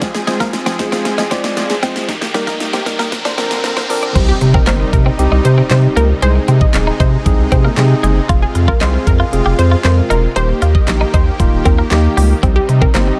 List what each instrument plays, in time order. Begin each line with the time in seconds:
Already playing: supersaw synth C4 G#4, riser
0.01 supersaw synth F3, synth arpeggio sound F4, kick, snare, closed hi-hat
0.15 synth arpeggio sound G#4, muted clean electric guitar stroke, snare, closed hi-hat
0.27 tine electric piano G#3 C4 F4 C5, clean electric guitar G#3, synth arpeggio sound C5, snare, closed hi-hat
0.40 clean electric guitar A#3, synth arpeggio sound F5, kick, snare, closed hi-hat
0.53 synth arpeggio sound F4, snare, closed hi-hat
0.66 clean electric guitar C4, synth arpeggio sound G#4, snare, closed hi-hat
0.79 tine electric piano G#3 C4 F4 G#4, synth arpeggio sound C5, muted clean electric guitar stroke, kick, snare, closed hi-hat
0.92 clean electric guitar C4, synth arpeggio sound F5, snare, closed hi-hat
1.05 synth arpeggio sound F4, muted clean electric guitar stroke, snare, closed hi-hat
1.18 clean electric guitar D#4, synth arpeggio sound G#4, snare, closed hi-hat
1.31 tine electric piano G#3 C4 F4 D5, clean electric guitar C4, synth arpeggio sound C5, kick, snare, closed hi-hat
1.44 snare, closed hi-hat
1.57 synth arpeggio sound F4, snare, closed hi-hat
1.70 synth arpeggio sound G#4, snare, closed hi-hat
1.82 tine electric piano G#3 C4 F4 C5, clean electric guitar C4, synth arpeggio sound C5, kick, snare, closed hi-hat
1.96 snare, closed hi-hat
2.08 supersaw synth D#3 A#3 G4, synth arpeggio sound D#4, kick, snare, closed hi-hat
2.21 synth arpeggio sound G4, muted clean electric guitar stroke, snare, closed hi-hat
2.34 clean electric guitar G3, tine electric piano G3 A#3 D#4 A#4, synth arpeggio sound A#4, snare, closed hi-hat
2.47 clean electric guitar A#3, synth arpeggio sound D#5, kick, snare, closed hi-hat
2.60 synth arpeggio sound D#4, snare, closed hi-hat
2.73 clean electric guitar C4, synth arpeggio sound G4, snare, closed hi-hat
2.86 tine electric piano G3 A#3 D#4 A#4, synth arpeggio sound A#4, muted clean electric guitar stroke, kick, snare, closed hi-hat
2.99 clean electric guitar A#3, synth arpeggio sound D#5, snare, closed hi-hat
3.12 supersaw synth D3 C4 A#4, synth arpeggio sound A#4, muted clean electric guitar stroke, kick, snare, closed hi-hat
3.25 clean electric guitar D4, synth arpeggio sound C5, snare, closed hi-hat
3.38 tine electric piano F3 C4 D4 A#4, clean electric guitar C4, synth arpeggio sound D5, snare, closed hi-hat
3.51 snare, closed hi-hat
3.64 synth arpeggio sound A#4, snare, closed hi-hat
3.77 clean electric guitar C4, synth arpeggio sound C5, snare, closed hi-hat
3.89 tine electric piano F3 C4 D4 A#4, synth arpeggio sound D5, muted clean electric guitar stroke, open hi-hat
4.03 clean electric guitar D4, closed hi-hat
4.15 sub bass C2, supersaw synth C3 G3 D#4, clean electric guitar C4, tine electric piano C4 D#4 G4, kick, closed hi-hat, crash, impact
4.29 synth pluck G4
4.41 sub bass C3, muted clean electric guitar stroke, closed hi-hat
4.54 clean electric guitar C4, synth pluck A#4, kick
4.67 sub bass G1, clean electric guitar A#3, tine electric piano C4 D#4 A#4, synth pluck C5, snare, clap, closed hi-hat
4.80 muted clean electric guitar stroke
4.93 sub bass C3, synth pluck A#4, kick, closed hi-hat
5.06 clean electric guitar C4
5.19 sub bass C2, tine electric piano C4 D#4 G4, closed hi-hat
5.32 sub bass C2, clean electric guitar D#4
5.45 sub bass C3, synth pluck C5, muted clean electric guitar stroke, closed hi-hat
5.58 clean electric guitar C4
5.70 sub bass C3, tine electric piano C4 D#4 G4, synth pluck C5, snare, clap, closed hi-hat
5.96 sub bass C#2, clean electric guitar A#3, synth pluck A#4, closed hi-hat
6.22 sub bass C2, clean electric guitar G#3, supersaw synth G#3 D#4, tine electric piano C4 D#4 G#4, synth pluck C5, closed hi-hat
6.35 muted clean electric guitar stroke
6.48 sub bass C3, clean electric guitar C4, closed hi-hat
6.61 synth pluck D#5, kick
6.73 sub bass D#1, tine electric piano C4 D#4 G#4, muted clean electric guitar stroke, snare, clap, closed hi-hat
6.87 clean electric guitar D#4
7.00 sub bass C3, clean electric guitar D#4, synth pluck C5, kick, closed hi-hat
7.25 sub bass C2, tine electric piano C4 D#4 G#4, muted clean electric guitar stroke, kick, closed hi-hat
7.38 sub bass C2
7.52 sub bass C3, clean electric guitar C4, synth pluck C5, kick, closed hi-hat
7.65 clean electric guitar A#3
7.77 sub bass C3, tine electric piano C4 D#4 G#4, snare, clap, closed hi-hat
8.03 sub bass F#1, clean electric guitar G#3, closed hi-hat
8.29 sub bass F1, supersaw synth G#3 F4, tine electric piano C4 F4 G#4, clean electric guitar F4, kick, closed hi-hat
8.42 synth pluck G#4
8.55 sub bass F2, muted clean electric guitar stroke, closed hi-hat
8.68 clean electric guitar F4, synth pluck A#4, kick
8.81 sub bass C2, tine electric piano C4 F4 G#4, clean electric guitar D#4, synth pluck C5, snare, clap, closed hi-hat
8.94 muted clean electric guitar stroke
9.07 sub bass F2, synth pluck A#4, kick, closed hi-hat
9.20 clean electric guitar F4
9.32 sub bass F1, tine electric piano C4 F4 G#4, closed hi-hat
9.46 sub bass F1, clean electric guitar G4
9.59 sub bass F2, synth pluck C5, muted clean electric guitar stroke, closed hi-hat
9.72 clean electric guitar F4
9.84 sub bass F2, tine electric piano C4 F4 A#4, synth pluck C5, snare, clap, closed hi-hat
10.10 sub bass E1, clean electric guitar D#4, synth pluck A#4, closed hi-hat
10.36 sub bass D#1, supersaw synth D#3 A#3 G4, tine electric piano A#3 D#4 G4, clean electric guitar D#4, synth pluck C5, closed hi-hat
10.49 muted clean electric guitar stroke
10.62 sub bass D#2, clean electric guitar F4, closed hi-hat
10.75 synth pluck D#5, kick
10.87 sub bass A#1, tine electric piano A#3 D#4 G4, muted clean electric guitar stroke, snare, clap, closed hi-hat
11.01 clean electric guitar D#4
11.14 sub bass D#2, clean electric guitar D#4, synth pluck C5, kick, closed hi-hat
11.39 sub bass D#1, tine electric piano A#3 D#4 F4, muted clean electric guitar stroke, kick, closed hi-hat
11.52 sub bass D#1
11.65 sub bass D#2, clean electric guitar C4, synth pluck A#4, kick, closed hi-hat
11.78 clean electric guitar A#3
11.91 sub bass D#2, tine electric piano A#3 D#4 G4, snare, clap, closed hi-hat
12.17 sub bass C#2, clean electric guitar G3, open hi-hat
12.43 sub bass C2, supersaw synth C3 G3 D#4, tine electric piano C4 D#4 G4, clean electric guitar C4, kick, closed hi-hat
12.56 synth pluck G4
12.69 sub bass C3, muted clean electric guitar stroke, closed hi-hat
12.81 clean electric guitar C4, synth pluck A#4, kick
12.94 sub bass G1, clean electric guitar A#3, tine electric piano C4 D#4 G4, synth pluck C5, snare, clap, closed hi-hat
13.08 muted clean electric guitar stroke